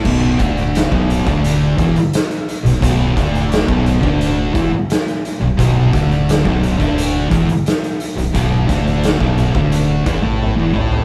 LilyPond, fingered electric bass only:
\new Staff \with { instrumentName = "Fingered electric bass" } { \clef bass \time 4/4 \key b \minor \tempo 4 = 87 b,,,8 d,,8. b,,,8 d,,8. e,,16 r4 b,,,16 | b,,,8 d,,8. b,,,8 d,,8. e,,16 r4 b,,,16 | b,,,8 d,,8. b,,,8 d,,8. e,,16 r4 b,,,16 | b,,,8 d,,8. b,,,8 d,,8. e,,16 a,,8 e,,16 a,,8 | }